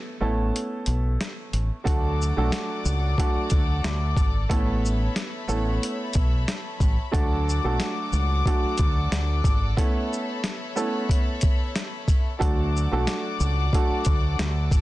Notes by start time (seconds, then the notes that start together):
Already playing: A3 B3 C#4 E4 A4
0.20 A1 A3 B3 C#4 E4 A4
0.56 closed hi-hat
0.86 B1, closed hi-hat
1.21 snare, closed hi-hat
1.53 A1, closed hi-hat
1.84 D2 F#3 A3 D4 F#4 A4 D5 F#5 D6, kick, closed hi-hat
2.22 shaker
2.37 B1 F#3 A3 D4 F#4 A4
2.52 snare, closed hi-hat
2.85 C#2, shaker
3.18 F#3 A3 D4 F#4 A4, kick, closed hi-hat
3.36 muted fingered electric bass stroke
3.50 D2, kick, closed hi-hat, shaker
3.84 D2, snare, closed hi-hat
4.17 G#1, kick, closed hi-hat, shaker
4.49 A1 A3 B3 C#4 E4 A4 C#5 E5 B5, kick, closed hi-hat
4.85 shaker
5.16 snare, closed hi-hat
5.48 A1 A3 B3 C#4 E4 A4, shaker
5.83 closed hi-hat
6.13 B1, kick, closed hi-hat, shaker
6.48 snare, closed hi-hat
6.80 A1, kick, closed hi-hat, shaker
7.11 D2 F#3 A3 D4 F#4 A4 D5 F#5 D6, kick, closed hi-hat
7.49 shaker
7.64 B1 F#3 A3 D4 F#4 A4
7.80 snare, closed hi-hat
8.13 C#2, shaker
8.46 F#3 A3 D4 F#4 A4, kick, closed hi-hat
8.64 muted fingered electric bass stroke
8.78 D2, kick, closed hi-hat, shaker
9.11 D2, snare, closed hi-hat
9.44 G#1, kick, closed hi-hat, shaker
9.77 A3 B3 C#4 E4 A4 C#5 E5 B5, kick, closed hi-hat
10.13 shaker
10.44 snare, closed hi-hat
10.76 A3 B3 C#4 E4 A4, shaker
11.09 kick, closed hi-hat
11.41 kick, closed hi-hat, shaker
11.76 snare, closed hi-hat
12.08 kick, closed hi-hat, shaker
12.39 D2 F#3 A3 D4 F#4 A4 D5 F#5 D6, kick, closed hi-hat
12.77 shaker
12.91 B1 F#3 A3 D4 F#4 A4
13.07 snare, closed hi-hat
13.40 C#2, shaker
13.73 F#3 A3 D4 F#4 A4, kick, closed hi-hat
13.91 muted fingered electric bass stroke
14.05 D2, kick, closed hi-hat, shaker
14.39 D2, snare, closed hi-hat
14.71 G#1, kick, closed hi-hat, shaker